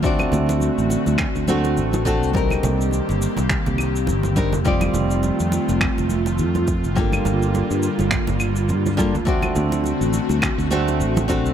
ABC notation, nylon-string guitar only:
X:1
M:4/4
L:1/16
Q:"Swing 16ths" 1/4=104
K:Dphr
V:1 name="Nylon-string guitar"
[A,CD^Fd]8- [A,CDFd]2 [A,CDFA]4 [A,CDFA]2 | [G,CDEB]12- [G,CDEB]2 [G,CDEB] z | [G,CEFd]8- [G,CEFd]2 z6 | [G,B,DFA]12- [G,B,DFA]2 [G,B,DFA] z |
[A,CD^Fd]8- [A,CDFd]2 [A,CDFA]4 [A,CDFA]2 |]